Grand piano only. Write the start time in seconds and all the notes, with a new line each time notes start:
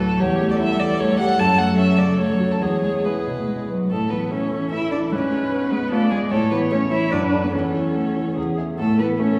Already playing: D2 A2 A3 F#4
0.00 A4
0.19 E2
0.40 A3
0.60 E4
0.80 E3
1.00 A3
1.19 G4
1.39 F#2
1.59 A3
1.78 C#4
1.99 C#3
2.19 A3
2.40 F#4
2.61 E2
2.83 G#3
3.05 E4
3.27 B2
3.48 G#3
3.70 B4
3.90 A2
4.11 E3
4.31 A3
4.52 E3
4.72 E4
4.93 E3
5.12 G#2
5.32 G#3
5.52 B3
5.72 G#3
5.91 F4
6.12 G#3
6.31 A2
6.51 E3
6.71 A3
6.91 E3
7.12 F#2
7.32 A4 D5
7.53 E2
7.74 E3
7.95 A3
8.16 E3
8.37 E2
8.58 G#4 E5
8.78 A2
8.99 E3
9.19 A3